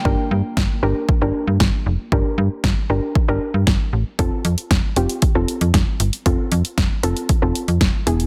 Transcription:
<<
  \new Staff \with { instrumentName = "Synth pluck" } { \time 4/4 \key f \mixolydian \tempo 4 = 116 <d' g' bes'>4 r8 <d' g' bes'>8 r16 <d' g' bes'>4~ <d' g' bes'>16 r8 | <d' g' bes'>4 r8 <d' g' bes'>8 r16 <d' g' bes'>4~ <d' g' bes'>16 r8 | <c' f' a'>4 r8 <c' f' g'>8 r16 <c' f' a'>4~ <c' f' a'>16 r8 | <c' f' a'>4 r8 <c' f' a'>8 r16 <c' f' a'>4~ <c' f' a'>16 <b e' gis'>8 | }
  \new Staff \with { instrumentName = "FM bass" } { \clef bass \time 4/4 \key f \mixolydian g,,16 r16 g,16 r16 g,,16 r16 g,,16 r8 g,,16 r16 g,16 g,,16 r16 f,,16 r16 | g,,16 r16 g,16 r16 g,,16 r16 g,,16 r8 g,,16 r16 g,16 g,,16 r16 a,,16 r16 | f,,16 r16 f,16 r16 f,,16 r16 f,,16 r8 f,,16 r16 f,16 f,,16 r16 g,,16 r16 | f,,16 r16 f,16 r16 f,,16 r16 f,,16 r8 f,,16 r16 f,16 f,,16 r16 e,,8 | }
  \new DrumStaff \with { instrumentName = "Drums" } \drummode { \time 4/4 bd4 <bd sn>4 bd4 <bd sn>4 | bd4 <bd sn>4 bd4 <bd sn>4 | <hh bd>8 hh16 hh16 <hh bd sn>8 hh16 hh16 <hh bd>8 hh16 hh16 <hh bd sn>8 hh16 hh16 | <hh bd>8 hh16 hh16 <hh bd sn>8 hh16 hh16 <hh bd>8 hh16 hh16 <hh bd sn>8 hh16 hh16 | }
>>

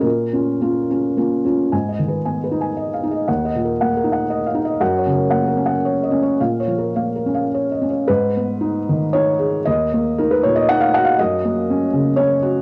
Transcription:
\new Staff \with { instrumentName = "Felt piano" } { \time 3/4 \key gis \dorian \tempo 4 = 116 << { ais'2 r4 | \tuplet 3/2 { gis''8 dis''8 b'8 gis''8 b'8 gis''8 dis''8 eis''8 dis''8 } | \tuplet 3/2 { fis''8 dis''8 ais'8 fis''8 ais'8 fis''8 dis''8 eis''8 dis''8 } | \tuplet 3/2 { fis''8 cis''8 ais'8 fis''8 ais'8 fis''8 cis''8 dis''8 cis''8 } |
\tuplet 3/2 { eis''8 cis''8 ais'8 eis''8 ais'8 eis''8 cis''8 dis''8 cis''8 } | b'2 cis''4 | dis''4 ais'16 b'16 cis''16 dis''16 fis''16 eis''16 fis''16 eis''16 | dis''2 cis''4 | } \\ { ais,8 <cis' eis'>8 <ais cis' eis'>8 <cis' eis'>8 <ais cis' eis'>8 <cis' eis'>8 | gis,8 dis8 b8 dis'4 dis'8 | dis,8 ais,8 ais8 dis'4 dis'8 | fis,8 cis8 ais8 cis'4 cis'8 |
ais,8 eis8 ais8 cis'4 cis'8 | gis,8 b8 dis'8 dis8 dis'8 gis'8 | dis,8 ais8 dis'8 ais,8 dis'8 fis'8 | fis,8 ais8 cis'8 cis8 cis'8 fis'8 | } >> }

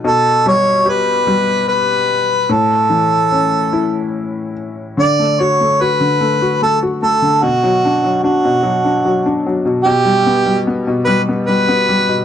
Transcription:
<<
  \new Staff \with { instrumentName = "Harmonica" } { \time 3/4 \key d \major \tempo 4 = 74 a'8 cis''8 b'4 b'4 | a'2 r4 | d''8 cis''8 b'4 a'8 a'8 | fis'4 fis'4. r8 |
g'4 r8 b'8 b'4 | }
  \new Staff \with { instrumentName = "Felt piano" } { \clef bass \time 3/4 \key d \major b,8 g8 g'8 g4. | a,8 e8 cis'8 e'4. | d16 a16 fis'16 a16 fis'16 d16 a16 fis'16 a16 fis'16 a16 d16 | b,16 fis16 d'16 fis16 d'16 b,16 fis16 d'16 fis16 d'16 fis16 b,16 |
b,16 g16 b16 g16 b16 b,16 g16 b16 g16 b16 g16 b,16 | }
>>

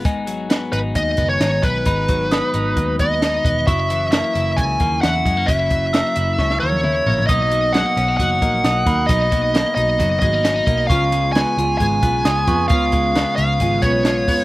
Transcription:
<<
  \new Staff \with { instrumentName = "Glockenspiel" } { \time 4/4 \key b \major \tempo 4 = 133 gis''1 | b''4 dis'''2. | cis'''1~ | cis'''4 e'''4 cis'''4. r8 |
dis'''2. dis'''8 b''8~ | b''1 | cis'''2. dis'''8 cis'''8~ | cis'''2.~ cis'''8 r8 | }
  \new Staff \with { instrumentName = "Lead electric guitar" } { \time 4/4 \key b \major r4. b'8 dis''8. cis''8. b'8~ | b'2~ b'8 dis''4. | e''4 e''4 gis''4 fis''4 | e''2~ e''8 cis''4. |
dis''4 fis''4 fis''2 | dis''4. dis''4 dis''4. | eis''4 gis''4 gis''2 | eis''4. eis''4 cis''4. | }
  \new Staff \with { instrumentName = "Clean electric guitar" } { \time 4/4 \key b \major <gis, dis'>8 fis8 b8 dis'8 dis8 b8 dis'8 b8 | <gis, dis'>8 fis8 b8 dis'8 dis8 b8 dis'8 b8 | <fis, e'>8 e8 ais8 e'8 cis8 ais8 e'8 gis16 ais16 | <fis, e'>4 ais8 e'8 cis8 ais8 e'8 ais8 |
<b, dis'>8 fis8 gis16 ais16 cis'16 dis'16 fis8 ais8 dis'8 ais8 | <b, dis'>8 fis8 ais8 dis'8 fis8 gis16 ais16 cis'16 dis'16 ais8 | <cis eis'>8 gis8 b8 eis'8 gis8 b8 eis'8 b8 | <cis eis'>8 gis8 b8 eis'8 gis8 b8 eis'8 b8 | }
  \new Staff \with { instrumentName = "Steel-string acoustic guitar" } { \time 4/4 \key b \major r1 | r1 | r1 | r1 |
<b, fis ais dis'>4 <b, fis ais dis'>4 <b, fis ais dis'>8 <fis ais dis'>4 <fis ais dis'>8 | <b, fis ais dis'>4 <b, fis ais>8 <fis ais dis'>8 <b, fis ais dis'>8 <fis ais dis'>4 <fis ais dis'>8 | <cis gis b eis'>4 <cis gis b eis'>8 <gis b eis'>8 <cis gis b eis'>8 <gis b eis'>4 <gis b eis'>8 | <cis gis b eis'>4 <cis gis b eis'>4 <cis gis b eis'>8 <gis b eis'>4 <gis b eis'>8 | }
  \new Staff \with { instrumentName = "Picked electric bass" } { \clef bass \time 4/4 \key b \major gis,,4~ gis,,16 r16 gis,,8 dis,8 fis,,8 gis,,8 b,,8 | gis,,4~ gis,,16 r16 gis,,8 dis,8 dis,4 e,,8 | fis,,4~ fis,,16 r16 fis,,8 cis,8 dis,8 e,8 fis,8 | fis,,4~ fis,,16 r16 fis,,8 cis,8 dis,4 ais,,8 |
b,,4~ b,,16 r16 b,,8 fis,,8 ais,,8 b,,8 dis,8 | b,,4~ b,,16 r16 b,,8 fis,,8 gis,,4 b,,8 | cis,4~ cis,16 r16 cis,8 gis,,8 b,,8 cis,8 eis,8 | cis,4~ cis,16 r16 cis,8 gis,,8 b,,4 fis,,8 | }
  \new DrumStaff \with { instrumentName = "Drums" } \drummode { \time 4/4 <hh bd>8 hh8 <hh sn>8 hh8 <hh bd>8 <hh bd>8 <hh sn>8 <hh bd>8 | <hh bd>8 <hh bd>8 <hh sn>8 hh8 <hh bd>8 <hh bd>8 <hh sn>8 <hh bd>8 | <hh bd>8 hh8 <hh sn>8 hh8 <hh bd>8 <hh bd>8 <hh sn>8 <hh bd>8 | <hh bd>8 <hh bd>8 <hh sn>8 hh8 <bd sn>16 sn8 tommh16 toml8 tomfh16 tomfh16 |
<hh bd>8 hh8 <hh sn>8 hh8 <hh bd>8 <hh bd>8 <hh sn>8 <hh bd>8 | <hh bd>8 <hh bd>8 <hh sn>8 hh8 <hh bd>8 <hh bd>8 <hh sn>8 <hh bd>8 | <hh bd>8 hh8 <hh sn>8 hh8 <hh bd>8 <hh bd>8 <hh sn>8 <hh bd>8 | <hh bd>8 <hh bd>8 <hh sn>8 hh8 <hh bd>8 <hh bd>8 <hh sn>8 <hho bd>8 | }
>>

